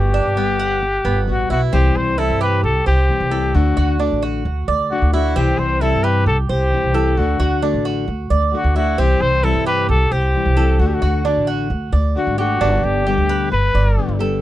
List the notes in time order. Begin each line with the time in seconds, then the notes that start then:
Already playing: G1 G3 B3 F#4 G4
0.14 D4
0.25 G1
0.36 G3 B3
0.59 F#5
0.82 muted nylon-string guitar stroke
1.05 G1 B3
1.27 A1 G3 B3 F#4
1.50 B1 B3 E4 F#4
1.72 C2 C3 E3 G3 C4 E4 G4
1.96 C2 C5
2.17 C3 E3 G3 C4 E4 A4
2.30 G2
2.41 G4 B4
2.63 C2 A4, muted nylon-string guitar stroke
2.86 C2 G4 C5
3.09 E3 G3 C4 E4
3.20 C2
3.31 E3 G3 C4 E4 A4
3.54 D2 D3 A3 D4 F#4
3.77 D2 F#4
4.00 D3 A3 D4 F#4
4.11 A1
4.22 F#4
4.45 D2, muted nylon-string guitar stroke
4.68 D2 D5
4.91 D3 A3 D4 F#4
5.02 D2
5.13 A3 D4 E4 F#4
5.36 C2 C3 E3 G3 C4 E4 G4
5.58 C2 C5
5.81 C3 E3 G3 C4 E4 A4
5.92 G2
6.04 G4 B4
6.26 C2 A4, muted nylon-string guitar stroke
6.49 C2 G4 C5
6.72 E3 G3 C4 E4
6.83 C2
6.94 E3 G3 C4 E4 A4
7.17 D2 D3 A3 D4 F#4
7.40 D2 F#4
7.62 D3 A3 D4 F#4
7.74 A1
7.85 F#4
8.07 D2, muted nylon-string guitar stroke
8.30 D2 D5
8.53 D3 A3 D4 F#4
8.64 D2
8.75 A3 D4 E4 F#4
8.98 C2 C3 E3 G3 C4 E4 G4
9.20 C2 C5
9.44 C3 E3 G3 C4 E4 A4
9.54 G2
9.66 G4 B4
9.89 C2 A4, muted nylon-string guitar stroke
10.11 C2 G4 C5
10.34 E3 G3 C4 E4
10.46 C2
10.57 E3 G3 C4 E4 A4
10.79 D2 D3 A3 D4 F#4
10.87 G4
10.94 F#4
11.02 D2 F#4
11.25 D3 A3 D4 F#4
11.36 A1
11.47 F#4
11.70 D2, muted nylon-string guitar stroke
11.92 D2 D5
12.15 D3 A3 D4 F#4
12.27 G#1
12.38 A3 D4 F#4 G4
12.60 G1 B2 D3 G3 B3 D4 G4
12.83 G1 G4
13.06 B2 D3 G3 B3 G4
13.17 D2
13.29 B4
13.52 G1 B4, muted nylon-string guitar stroke
13.74 G1 D5
13.97 D3 G3 B3 G4
14.08 G1
14.19 D3 G3 B3 G4 A4